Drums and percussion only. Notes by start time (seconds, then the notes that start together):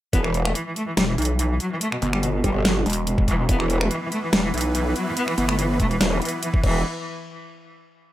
0.13 kick, closed hi-hat
0.24 finger snap
0.34 closed hi-hat
0.45 finger snap
0.55 closed hi-hat
0.76 closed hi-hat
0.97 snare, closed hi-hat
1.18 closed hi-hat
1.22 closed hi-hat
1.25 closed hi-hat
1.39 closed hi-hat
1.60 closed hi-hat
1.81 closed hi-hat
1.92 finger snap
2.02 closed hi-hat
2.13 finger snap
2.23 closed hi-hat
2.44 kick, closed hi-hat
2.65 snare, closed hi-hat
2.86 closed hi-hat
2.90 closed hi-hat
2.93 closed hi-hat
3.07 closed hi-hat
3.18 kick
3.28 kick, closed hi-hat
3.49 kick, closed hi-hat
3.60 finger snap
3.70 closed hi-hat
3.81 finger snap
3.91 closed hi-hat
4.12 closed hi-hat
4.33 snare, closed hi-hat
4.54 closed hi-hat
4.58 closed hi-hat
4.61 closed hi-hat
4.75 closed hi-hat
4.96 closed hi-hat
5.17 closed hi-hat
5.28 finger snap
5.38 closed hi-hat
5.49 finger snap
5.59 closed hi-hat
5.80 kick, closed hi-hat
5.91 closed hi-hat
6.01 snare, closed hi-hat
6.22 closed hi-hat
6.25 closed hi-hat
6.29 closed hi-hat
6.43 closed hi-hat
6.54 kick
6.64 kick, crash